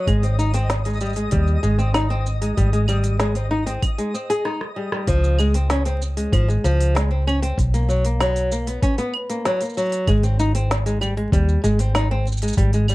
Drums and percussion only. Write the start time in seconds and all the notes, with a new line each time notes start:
0.07 kick, open hi-hat, claves, shaker
0.23 open hi-hat, shaker
0.39 shaker
0.54 open hi-hat, shaker
0.70 snare, open hi-hat, shaker
0.85 open hi-hat, shaker
0.90 shaker
0.93 shaker
0.97 shaker
1.01 shaker
1.09 shaker
1.13 open hi-hat, shaker
1.17 shaker
1.31 kick, open hi-hat, shaker
1.48 shaker
1.63 shaker
1.79 shaker
1.94 snare, open hi-hat, claves, shaker
2.11 shaker
2.26 shaker
2.42 open hi-hat, shaker
2.57 kick, open hi-hat, shaker
2.73 open hi-hat, shaker
2.88 claves, shaker
3.04 open hi-hat, shaker
3.20 snare, open hi-hat, shaker
3.35 open hi-hat, shaker
3.67 open hi-hat, shaker
3.82 kick, open hi-hat, claves, shaker
3.98 open hi-hat, shaker
4.15 shaker
4.30 open hi-hat, shaker
4.45 cross-stick
4.61 cross-stick
4.92 cross-stick
5.07 kick, open hi-hat, shaker
5.24 shaker
5.39 claves, shaker
5.54 open hi-hat, shaker
5.70 snare, open hi-hat, shaker
5.85 open hi-hat, shaker
6.02 shaker
6.17 open hi-hat, shaker
6.33 kick, open hi-hat, claves, shaker
6.50 shaker
6.65 shaker
6.81 open hi-hat, shaker
6.96 snare, open hi-hat, shaker
7.28 claves, shaker
7.43 open hi-hat
7.58 kick, open hi-hat, shaker
7.74 open hi-hat, shaker
7.90 shaker
8.05 open hi-hat, shaker
8.21 snare, open hi-hat, claves, shaker
8.36 open hi-hat, shaker
8.52 shaker
8.67 open hi-hat, shaker
8.82 kick, open hi-hat, shaker
8.98 open hi-hat, shaker
9.14 claves
9.30 open hi-hat, shaker
9.45 snare, open hi-hat, shaker
9.61 open hi-hat, shaker
9.65 shaker
9.69 shaker
9.74 shaker
9.78 shaker
9.82 shaker
9.85 shaker
9.89 open hi-hat, shaker
9.93 shaker
10.07 kick, open hi-hat, claves, shaker
10.23 open hi-hat, shaker
10.40 shaker
10.55 open hi-hat, shaker
10.71 snare, open hi-hat, shaker
10.86 open hi-hat, shaker
11.01 claves, shaker
11.17 open hi-hat
11.32 kick, open hi-hat, shaker
11.49 shaker
11.64 shaker
11.79 open hi-hat, shaker
11.95 snare, open hi-hat, claves, shaker
12.27 shaker
12.32 shaker
12.37 shaker
12.42 open hi-hat, shaker
12.48 shaker
12.53 shaker
12.57 kick, open hi-hat
12.73 open hi-hat, shaker
12.88 claves, shaker